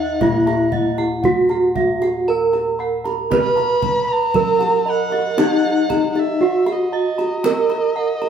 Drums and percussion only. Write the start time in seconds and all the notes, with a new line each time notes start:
0.21 kendang low
0.47 kendang slap
0.72 kendang low
0.98 kendang slap
1.24 kendang low
1.49 kendang slap
1.76 kendang low
2.02 kendang slap
2.53 kendang slap
3.05 kendang slap
3.31 kendang high, kendang low
3.57 kendang slap
3.82 kendang low
4.34 kendang low
4.60 kendang slap
5.12 kendang slap
5.38 kendang high
5.64 kendang slap
5.90 kendang high, kendang low
6.15 kendang slap
6.66 kendang slap
7.19 kendang slap
7.44 kendang high
7.70 kendang slap
8.22 kendang slap